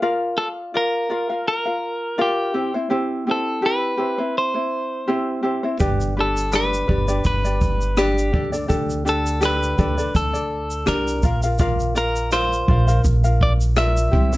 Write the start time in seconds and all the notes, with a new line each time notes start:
0.02 F4 A#4 D5 F5
0.38 F4 A4 D5 F5
0.74 F4 A#4 D5 F5
1.10 F4 A#4 D5 F5
1.29 F4 A#4 F5
1.48 A#4
1.66 F4 A#4 F5
2.18 F4 G4 A#4 D5 F5
2.54 C4 E4 G4 C5
2.74 C4 E4 C5
2.90 C4 E4 G4 C5
3.27 C4 E4 G4 C5
3.31 A4
3.62 C4 E4 G4 B4
3.97 C4 E4 G4 C5
4.18 C4 E4 C5
4.38 C5
4.54 C4 E4 C5
5.07 C4 E4 G4 C5
5.43 C4 E4 G4 C5
5.63 C4 E4 C5
5.80 G1 D4 G4 B4 D5, kick, shaker
6.01 shaker
6.17 D4 G4 A4 B4 D5
6.37 shaker
6.52 D4 G4 B4 D5, cross-stick, shaker
6.74 shaker
6.88 G1 D4 G4 B4 D5, kick
7.08 D4 G4 D5, shaker
7.25 G1 B4, kick, shaker
7.45 D4 G4 D5, shaker
7.62 kick, shaker
7.81 shaker
7.97 D4 G4 B4 D5, cross-stick, shaker
8.18 shaker
8.33 D2 D4 G4 A4 D5, kick
8.52 D4 A4 D5, shaker
8.68 D2 D4 G4 A4 D5, kick, shaker
8.90 shaker
9.05 D4 G4 A4 D5, shaker
9.09 A4
9.27 shaker
9.41 D4 G4 A4 D5, cross-stick, shaker
9.45 B4
9.63 shaker
9.78 D2 D4 G4 A4 D5, kick, shaker
9.98 D4 A4 D5, shaker
10.15 D2 A4, kick, shaker
10.33 D4 A4 D5, shaker
10.71 shaker
10.86 C2 D4 G4 A#4 D5, cross-stick, shaker
11.08 shaker
11.23 A#1 F4 A#4 D5 F5, kick, shaker
11.43 F4 A#4 F5, shaker
11.59 F4 A#4 D5 F5, kick, shaker
11.80 shaker
11.95 F4 A#4 D5 F5, shaker
12.16 shaker
12.32 F4 A#4 C5 D5 F5, cross-stick, shaker
12.53 shaker
12.68 A#1 F4 A#4 D5 F5, kick
12.87 F4 A#4 F5, shaker
13.04 A#1, kick, shaker
13.24 F4 A#4 F5, shaker
13.41 D5, kick
13.61 shaker
13.76 F4 A#4 D5 E5, cross-stick, shaker
13.97 shaker
14.11 C2 C4 E4 G4 C5, kick
14.33 E4 C5, shaker